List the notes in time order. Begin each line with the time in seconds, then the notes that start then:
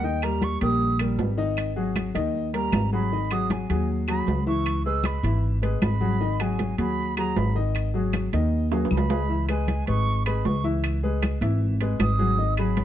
Already playing: D#2
0.03 D#3 D#4 D#5 G5, high conga
0.22 G3 G4 A#4 A#5, high conga, high timbale, claves
0.42 C#6, high conga, high timbale, low timbale
0.61 A#1 G3 G4 A#4 D#6, high conga, high timbale
0.81 high conga
0.99 G3 G4 A#4, high conga, high timbale, claves
1.18 G#1, high conga, low timbale
1.37 D#3 D#4 D#5
1.57 high conga, high timbale, claves
1.76 F#3 F#4 G#4, high conga
1.96 high conga, high timbale, low timbale, claves
2.14 D#2 D#3 D#4 D#5, high conga, high timbale
2.34 high conga
2.53 G3 G4 A#4 A#5, high conga, high timbale
2.72 G#1, high conga, high timbale, low timbale, claves
2.92 F#3 F#4 G#4 B5
3.12 D#3 D#4 D#5, high conga
3.31 F#3 F#4 G#4 D#6, high conga, high timbale, claves
3.50 G#5, high conga, high timbale, low timbale
3.70 D#2 F#3 F#4 G#4, high conga, high timbale
3.89 high conga
4.08 F#3 F#4 G#4 B5, high conga, high timbale, claves
4.27 C#2, high conga, low timbale
4.46 E3 E4 E5 C#6
4.66 high conga, high timbale, claves
4.85 G#3 G#4 B4 E6, high conga
5.04 B5, high conga, high timbale, low timbale, claves
5.23 G#1 E3 E4 E5, high conga, high timbale
5.43 high conga
5.62 G#3 G#4 B4, high conga, high timbale
5.82 G#1 B5, high conga, high timbale, low timbale, claves
6.01 F#3 F#4 G#4, high conga
6.20 D#3 D#4 D#5, high conga
6.40 F#3 F#4 G#4 G#5, high conga, high timbale, claves
6.59 high conga, high timbale, low timbale
6.78 D#2 F#3 F#4 G#4 B5, high conga, high timbale
6.99 high conga
7.17 F#3 F#4 G#4 A#5, high conga, high timbale, claves
7.36 G#1 B5, high conga, low timbale
7.55 D#3 D#4 D#5
7.75 high conga, high timbale, claves
7.94 F#3 F#4 G#4, high conga
8.13 high conga, high timbale, low timbale, claves
8.33 D#2 D#3 D#4 D#5, high timbale
8.53 high conga
8.72 F#3 F#4 G#4, high conga, high timbale
8.85 high timbale
8.91 C#2 B5, high conga, claves
8.97 low timbale
9.09 G#3 G#4 B4, low timbale
9.29 E3 E4 E5, high conga
9.49 G#3 G#4 B4 G#5, high conga, high timbale, claves
9.68 high conga, high timbale, low timbale
9.87 G#1 G#3 G#4 B4 C#6, high conga, high timbale
10.07 high conga
10.26 G#3 G#4 B4 B5, high conga, high timbale, claves
10.45 C#2 C#6, high conga, low timbale
10.64 E3 E4 E5
10.84 high conga, high timbale, claves
11.03 G#3 G#4 B4, high conga
11.23 high conga, high timbale, low timbale, claves
11.41 G#1 E3 E4 E5, high conga, high timbale
11.62 high conga
11.81 G#3 G#4 B4, high conga, high timbale
11.99 G#1 D#6, high conga, high timbale, low timbale, claves
12.19 F#3 F#4 G#4, high conga
12.38 D#3 D#4 D#5, high conga
12.57 F#3 F#4 G#4 B5, high conga, high timbale, claves
12.77 high conga, high timbale, low timbale